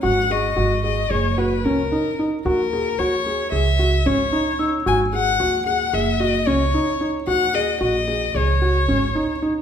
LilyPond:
<<
  \new Staff \with { instrumentName = "Celesta" } { \time 9/8 \key fis \mixolydian \tempo 4. = 75 r8 cis'''2 r2 | r1 e'''8~ | e'''8 r1 | r1 r8 | }
  \new Staff \with { instrumentName = "Violin" } { \time 9/8 \key fis \mixolydian fis''8 dis''4 dis''8 cis''8 b'8 ais'4 r8 | ais'4 cis''4 e''4 cis''4 r8 | gis''8 fis''4 fis''8 e''8 dis''8 cis''4 r8 | fis''8 dis''8 dis''4 cis''2 r8 | }
  \new Staff \with { instrumentName = "Felt piano" } { \time 9/8 \key fis \mixolydian fis'8 gis'8 fis'8 gis'8 gis'8 fis'8 cis'8 dis'8 dis'8 | fis'8 gis'8 fis'8 gis'8 gis'8 fis'8 cis'8 dis'8 dis'8 | fis'8 gis'8 fis'8 gis'8 gis'8 fis'8 cis'8 dis'8 dis'8 | fis'8 gis'8 fis'8 gis'8 gis'8 fis'8 cis'8 dis'8 dis'8 | }
  \new Staff \with { instrumentName = "Upright bass" } { \clef bass \time 9/8 \key fis \mixolydian gis,,4 gis,,4 fis,,4 cis,8 r4 | dis,4 dis,4 cis,4 gis,,8 r4 | gis,,4 dis,4 fis,,4 cis,8 r4 | dis,4 ais,,4 cis,4 gis,,8 r4 | }
>>